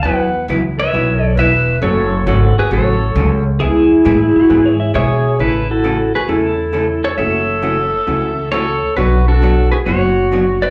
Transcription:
0.02 E2 E3 F#3 B3 E4 B4 F#5
0.48 C#2 E3 F#3 B3 E4 B4
0.78 B4 C#5 E5
0.93 B1 E3 F#3 B3 E4 B4
1.20 A4
1.25 D5
1.35 E1 E3 F#3 B3 E4 B4 E5
1.40 B4
1.81 F#1 C#3 F#3 A3 C#4 F#4 A4 C#5
2.26 G#1 C#3 F#3 A3 C#4 F#4 A4
2.57 F#4 G#4 B4, muted upright bass stroke
2.70 A1 C#3 F#3 A3 C#4 F#4 A4 C#5
3.15 C#2 C#3 F#3 A3 C#4 F#4
3.59 E2 E3 G#3 B3 E4 G#4
4.05 A2 E3 G#3 B3 E4 G#4
4.36 F#4, muted upright bass stroke
4.50 G#2 E3 G#3 B3 E4 G#4 B4
4.66 C#5
4.80 E5
4.94 B2 E3 G#3 B3 E4 G#4 C#5 E5
5.39 A1 C#3 E3 A3 C#4 E4 A4 B4
5.70 E4 F#4 A4
5.84 C#3 E3 A3 C#4 A4
6.15 F#4 G#4 B4
6.28 E2 C#3 E3 A3 C#4 E4 A4
6.72 C#3 E3 A3 C#4 A4
7.04 A4 C#5
7.18 F#1 C#3 E3 A3 C#4 F#4 A4 C#5 E5
7.62 C#3 E3 A3 C#4 F#4
8.07 C#2 C#3 E3 A3 C#4 F#4
8.52 C#3 E3 A3 C#4 F#4 A4 C#5
8.96 B1 B2 F#3 B3 D4 F#4 B4 C#5
9.28 D4 F#4 A4
9.42 B2 F#3 B3 D4 F#4 C#5
9.71 F#4 G#4 B4
9.86 F#1 B2 F#3 B3 D4 F#4 C#5
10.31 B2 F#3 B3 D4 F#4 C#5
10.62 B4 D5

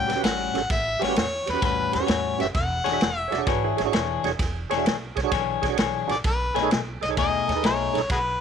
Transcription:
Already playing: A2 G3 C#4 F#4 G5
0.07 C#2 G4 B4, snare, ride
0.15 C#4 F#4 G4 B4
0.23 A1 A2 G3 C#4 F#4 F#5, snare, ride
0.54 A1 C#4 F#4 G4 A4, snare, ride
0.70 A1 E5, kick, snare, ride
0.99 A1 A2 G3 C#4 F#4 G4 B4 C#5, snare, ride
1.07 C#4 F#4 G4 B4
1.16 E2 C#5, snare, ride
1.46 E2 G4 B4, snare, ride
1.53 C#4 F#4 G4 B4
1.62 E2 A2 G3 C#4 F#4 B4, kick, snare, ride
1.92 E2 G4 B4 C#5, snare, ride
2.00 C#4 F#4 G4 B4
2.06 E2 A2 G3 C#4 F#4, snare, ride
2.38 F#1 C#4 F#4 G4 B4 E5, snare, ride
2.54 E1 F#5, kick, snare, ride
2.84 E1 E3 D4 G#4 C#5, snare, ride
2.92 D4 F#4 G#4 E5
3.01 E1, snare, ride
3.18 E5
3.28 F#4 G#4 C#5
3.32 E1 C#5 D5, snare, ride
3.38 D4 F#4 G#4 C#5
3.47 G#1 E3 D4 F#4 G#4 B4 C#5, kick, snare, ride
3.64 E4 G#4
3.77 G#1 G#4 C#5, snare, ride
3.85 D4 F#4 G#4 C#5
3.93 E1 E3 D4 G#4 C#5, snare, ride
4.24 E1 D4 F#4 G#4 C#5, snare, ride
4.39 E1, kick, snare, ride
4.69 E1 E3 D4 G#4 C#5, snare, ride
4.77 D4 F#4 G#4 E5
4.85 B1, snare, ride
5.16 B1 G#4 C#5, kick, snare, ride
5.23 D4 F#4 G#4 C#5
5.31 B1 E3 D4 G#4 C#5, kick, snare, ride
5.62 B1 G#4 C#5, kick, snare, ride
5.68 D4 F#4 G#4 C#5
5.77 B1 E3 D4 G#4 C#5, snare, ride
6.07 A#1 D4 F#4 G#4 C#5 D5, snare, ride
6.24 B1 B4, kick, snare, ride
6.54 B1 B2 A3 D#4 G#4 A4 C#5, snare, ride
6.62 D#4 G#4 A4 C#5
6.71 B1, snare, ride
7.01 B1 A4 C#5 D#5, snare, ride
7.08 D#4 G#4 A4 C#5
7.17 D#2 B2 A3 D#4 G#4 D#5, kick, snare, ride
7.47 D#2 A4 C#5, snare, ride
7.55 D#4 G#4 A4 B4
7.63 B1 B2 A3 D#4 G#4 C#5, snare, ride
7.93 B1 D#4 G#4 A4 C#5, snare, ride
8.10 B1 F#4 G#4 B4, kick, snare, ride

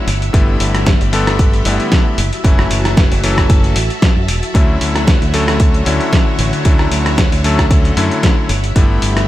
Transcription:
Already playing: E5
0.07 G1 G4 B5, open hi-hat
0.22 closed hi-hat
0.33 G1 D3 G3 A3 B3 E4, kick, closed hi-hat
0.60 G1, open hi-hat
0.75 cross-stick, closed hi-hat
0.86 kick, snare, closed hi-hat
1.01 G1, closed hi-hat
1.13 D3 G3 A3 B3 A4, open hi-hat
1.27 cross-stick, closed hi-hat
1.39 kick, closed hi-hat
1.53 closed hi-hat
1.65 G1 D3 G3 A3 B3 E4, open hi-hat
1.80 closed hi-hat
1.92 kick, snare, open hi-hat
2.18 F#1 F#4 A5, open hi-hat
2.33 closed hi-hat
2.44 F#1 E3 F#3 A3 C#4 E4, kick, closed hi-hat
2.59 cross-stick
2.71 F#1, open hi-hat
2.85 cross-stick, closed hi-hat
2.97 kick, snare, closed hi-hat
3.11 F#1, open hi-hat
3.23 E3 F#3 A3 C#4 A4, open hi-hat
3.38 kick, cross-stick, closed hi-hat
3.50 kick, closed hi-hat
3.64 closed hi-hat
3.76 A1, open hi-hat
3.90 closed hi-hat
4.02 kick, snare, closed hi-hat
4.17 F#2
4.28 E1, open hi-hat
4.43 closed hi-hat
4.54 D2 D3 F#3 A3 C#4 E4 C#5 F#5, kick, closed hi-hat
4.81 D2, open hi-hat
4.96 cross-stick, closed hi-hat
5.07 kick, snare, closed hi-hat
5.22 D2, closed hi-hat
5.33 D3 F#3 A3 C#4 A4, open hi-hat
5.48 cross-stick, closed hi-hat
5.60 kick, closed hi-hat
5.74 closed hi-hat
5.85 D2 D3 F#3 A3 C#4 E4, open hi-hat
6.01 closed hi-hat
6.13 kick, snare, open hi-hat
6.39 A1, open hi-hat
6.53 closed hi-hat
6.65 D2 D3 F#3 A3 C#4 E4, kick, closed hi-hat
6.79 cross-stick
6.92 D2, open hi-hat
7.06 cross-stick, closed hi-hat
7.18 kick, snare, closed hi-hat
7.32 D2, open hi-hat
7.44 D3 F#3 A3 C#4 A4, open hi-hat
7.59 kick, cross-stick, closed hi-hat
7.71 kick, closed hi-hat
7.85 closed hi-hat
7.97 F#2 D3 F#3 A3 C#4 E4, open hi-hat
8.11 closed hi-hat
8.23 kick, snare, closed hi-hat
8.49 G1 G4 B5, open hi-hat
8.64 closed hi-hat
8.75 G1 D3 G3 A3 B3 E4, kick, closed hi-hat
9.02 G1, open hi-hat
9.17 cross-stick, closed hi-hat

